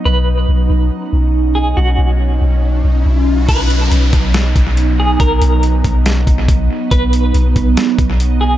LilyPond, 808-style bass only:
\new Staff \with { instrumentName = "808-style bass" } { \clef bass \time 4/4 \key b \major \tempo 4 = 140 b,,4 b,,8 b,,8 r8 b,,4. | b,,8 b,,4 b,,4 b,,8 b,,4 | b,,4 b,,8 b,,4 b,,4. | b,,8 b,,4 b,,4 b,,8 b,,8 r8 |
b,,4 b,,8 b,,8 r8 b,,4. | }